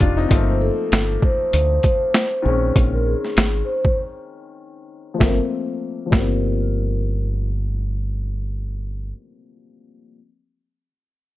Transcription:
Already playing: upright piano D#3 G3 A#3 C4 D#4 G4
0.00 fingered electric bass F1, upright piano D4 F4, kick, shaker
0.17 upright piano C4 D#4, shaker
0.28 fingered electric bass G1, upright piano F3 A3, kick, closed hi-hat
0.32 upright piano A#3 C4
0.47 vibraphone C5
0.62 vibraphone A4
0.92 fingered electric bass G1, snare, closed hi-hat
1.22 vibraphone C5, kick
1.53 fingered electric bass D2, closed hi-hat
1.83 vibraphone C5, kick, closed hi-hat
2.14 snare, closed hi-hat
2.42 fingered electric bass A#1, upright piano D#3 G#3
2.46 upright piano C4 C#4
2.76 fingered electric bass A#1, kick, closed hi-hat
2.94 vibraphone A#4
3.06 vibraphone G#4
3.25 snare
3.37 fingered electric bass G#1, snare, closed hi-hat
3.65 vibraphone C5
3.85 kick
5.14 upright piano F3
5.18 fingered electric bass G1, upright piano A3, vibraphone A#4, kick, snare
5.22 upright piano A#3
5.26 upright piano C4
6.06 upright piano F3
6.10 fingered electric bass G1, upright piano G3 A#3, vibraphone A#4, kick, snare
6.18 upright piano C4

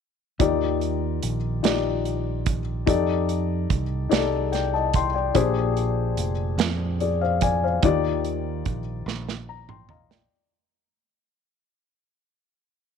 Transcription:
0.39 fingered electric bass D#2, grand piano D#3 D#4 F4 G4 D5, kick, closed hi-hat
0.81 closed hi-hat
1.23 fingered electric bass A#1, closed hi-hat
1.63 fingered electric bass A#1, grand piano D#4 F4 G4 D5, snare, closed hi-hat
2.05 closed hi-hat
2.46 kick, closed hi-hat
2.86 fingered electric bass F2, grand piano D#4 G4 A4 D5, kick, closed hi-hat
3.29 closed hi-hat
3.70 fingered electric bass C2, kick, closed hi-hat
4.09 fingered electric bass C2, grand piano D#4 G4 G#4 D5, snare, closed hi-hat
4.17 grand piano A4
4.52 grand piano D5 G5, snare, closed hi-hat
4.74 grand piano D#5 A5
4.94 grand piano G5 C6, kick, closed hi-hat
5.14 grand piano D5 G5
5.34 fingered electric bass A#1, grand piano A#2 D4 G4 G#4 C5, kick, closed hi-hat
5.77 closed hi-hat
6.17 fingered electric bass F1, closed hi-hat
6.58 fingered electric bass F2, snare, closed hi-hat
7.00 grand piano G#4 D5, closed hi-hat
7.21 grand piano C5 F5
7.41 grand piano D5 G#5, kick, closed hi-hat
7.64 grand piano C5 F5
7.83 fingered electric bass D#2, grand piano D#3 D#4 F4 G4 D5, kick, closed hi-hat
8.24 closed hi-hat
8.65 fingered electric bass A#1, kick, closed hi-hat
9.06 fingered electric bass A#1, snare
9.29 snare
9.49 grand piano A#5
9.69 grand piano G5 C6, mid tom
9.89 grand piano D#5 F5 A#5, floor tom
10.10 grand piano D5 G5, snare

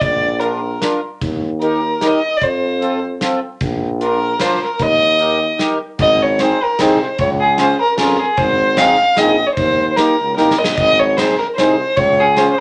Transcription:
0.01 tuba A#1, fiddle D5, kick, closed hi-hat
0.39 accordion D4 F4 A#4, fiddle A#4, closed hi-hat
0.81 accordion D4 F4 A#4, snare, closed hi-hat
1.21 tuba D#2, kick, closed hi-hat
1.61 accordion D#4 G4 A#4, fiddle A#4, closed hi-hat
2.01 accordion D#4 G4 A#4, snare, closed hi-hat
2.07 fiddle D#5
2.37 fiddle D5
2.42 tuba F2, fiddle C5, kick, closed hi-hat
2.81 accordion C4 F4 A4, closed hi-hat
3.21 accordion C4 F4 A4, snare, closed hi-hat
3.61 tuba A#1, kick, closed hi-hat
4.00 accordion D4 F4 A#4, fiddle A#4, closed hi-hat
4.40 accordion D4 F4 A#4, fiddle C5, snare, closed hi-hat
4.63 fiddle A#4
4.79 tuba D#2, fiddle D#5, kick, closed hi-hat
5.19 accordion D#4 G4 A#4, closed hi-hat
5.58 accordion D#4 G4 A#4, snare, closed hi-hat
5.99 tuba G#1, fiddle D#5, kick, crash
6.22 fiddle C#5
6.39 accordion C4 D#4 G#4, fiddle C5, snare, ride
6.64 fiddle A#4
6.79 tuba C2, accordion C4 D#4 G#4, fiddle C5, snare, ride
7.18 tuba C#2, fiddle C#5, kick, ride
7.40 fiddle G#4
7.58 accordion C#4 F4 G#4, fiddle C5, snare, ride
7.81 fiddle A#4
7.97 tuba F2, accordion C#4 F4 G#4, fiddle A#4, snare, ride
8.20 fiddle G#4
8.37 tuba G#1, fiddle C5, kick, ride
8.77 accordion C4 D#4 G#4, fiddle F5, snare, ride
9.16 tuba A#1, accordion C4 D#4 G#4, fiddle D#5, snare, ride
9.46 fiddle C#5
9.54 tuba D#2, fiddle C5, kick, ride
9.91 fiddle C5
9.96 accordion A#3 D#4 G4, fiddle A#4, snare, ride
10.20 tuba C#2
10.36 tuba C2, accordion A#3 D#4 G4, fiddle A#4, snare
10.51 snare
10.58 tuba A#1, fiddle D#5
10.64 snare
10.77 tuba G#1, fiddle D#5, kick, ride
10.99 fiddle C#5
11.17 accordion C4 D#4 G#4, fiddle C5, snare, ride
11.38 fiddle A#4
11.55 tuba C2, accordion C4 D#4, fiddle C5, snare, ride
11.59 accordion G#4
11.96 tuba C#2, fiddle C#5, kick, ride
12.21 fiddle G#4
12.37 accordion C#4 F4 G#4, fiddle C5, snare, ride
12.52 fiddle C5

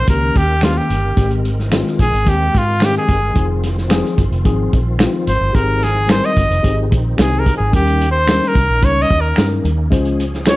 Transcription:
Already playing: tonewheel organ D#3 A#3 C#4 A#4
0.07 fingered electric bass C#2, tine electric piano D#3 A#3 C#4 G4, trumpet A#4, kick, closed hi-hat
0.36 fingered electric bass D#2, trumpet G4, kick, closed hi-hat
0.61 tine electric piano D#3 A#3 C#4 G4, trumpet F4, finger snap, snare, closed hi-hat
0.78 trumpet G4
0.90 fingered electric bass G1, closed hi-hat
1.16 fingered electric bass G#1, tine electric piano D#3 G#3 C4 G4, tonewheel organ G#3 C4, kick, closed hi-hat
1.31 closed hi-hat
1.45 closed hi-hat
1.59 snare
1.70 tine electric piano D#3 G#3 C4 F4, finger snap, snare, closed hi-hat
1.86 snare
1.99 fingered electric bass A#1, trumpet G#4, kick, closed hi-hat
2.13 fingered electric bass G#1, closed hi-hat
2.25 fingered electric bass D#2, tine electric piano D#3 G#3 C4 G4, trumpet G4, kick, closed hi-hat
2.55 fingered electric bass G#2, trumpet F4, kick, closed hi-hat
2.80 tine electric piano D#3 G#3 C4 G4, finger snap, snare, closed hi-hat
2.85 trumpet G4
2.98 trumpet G#4
3.09 fingered electric bass G1, kick, closed hi-hat
3.34 fingered electric bass F1, tonewheel organ D#3 F3 F4, tine electric piano F3 C4 D#4 G#4, kick, closed hi-hat
3.64 snare, closed hi-hat
3.78 snare
3.89 tine electric piano F3 C4 D#4 G#4, finger snap, snare, closed hi-hat
4.05 snare
4.18 fingered electric bass G1, kick, closed hi-hat
4.32 fingered electric bass F1, closed hi-hat
4.44 fingered electric bass G#1, tine electric piano F3 C4 D#4 G#4, kick, closed hi-hat
4.73 fingered electric bass A#1, kick, closed hi-hat
4.98 tine electric piano F3 C4 D#4 F4, finger snap, snare, closed hi-hat
5.27 fingered electric bass G#1, trumpet C5, closed hi-hat
5.41 fingered electric bass G1
5.53 fingered electric bass G#1, tonewheel organ D#3 C4 D#4, tine electric piano C4 D#4 G4 G#4, trumpet A#4, kick, closed hi-hat
5.82 trumpet G#4, snare, closed hi-hat
6.08 tine electric piano G3 C4 D#4 A#4, trumpet C5, finger snap, snare, closed hi-hat
6.24 trumpet D#5, snare
6.37 fingered electric bass G1, kick, closed hi-hat
6.50 fingered electric bass F1, closed hi-hat
6.63 fingered electric bass G#1, tine electric piano C4 D#4 G4 G#4, kick, closed hi-hat
6.92 fingered electric bass A#1, kick, closed hi-hat
7.17 fingered electric bass C2, tine electric piano C4 D#4 G4 G#4, trumpet G#4, finger snap, snare, closed hi-hat
7.39 trumpet A#4
7.46 kick, closed hi-hat
7.57 fingered electric bass G#1, trumpet G#4
7.73 fingered electric bass D#2, tine electric piano G3 C#4 D#4 A#4, tonewheel organ A#3 C#4, trumpet G4, kick, closed hi-hat
7.87 closed hi-hat
8.01 closed hi-hat
8.11 trumpet C5
8.27 tine electric piano G3 C#4 D#4 A#4, finger snap, snare, closed hi-hat
8.43 snare
8.48 trumpet A#4
8.55 fingered electric bass C2, kick, closed hi-hat
8.69 fingered electric bass A#1
8.81 fingered electric bass C#2, tine electric piano G3 C#4 D#4 C#5, trumpet C#5, kick, closed hi-hat
9.02 trumpet D#5
9.10 fingered electric bass D#2, kick, closed hi-hat
9.21 trumpet A#4
9.36 fingered electric bass G2, tine electric piano G3 C#4 D#4 A#4, finger snap, snare, closed hi-hat
9.64 fingered electric bass D#2, closed hi-hat
9.90 fingered electric bass C#2, tonewheel organ F3 G#4, tine electric piano G#3 C#4 F4 C5, kick, closed hi-hat
10.05 closed hi-hat
10.20 closed hi-hat
10.34 snare
10.46 tine electric piano G#3 C#4 F4 C5, trumpet C#5, finger snap, snare, closed hi-hat

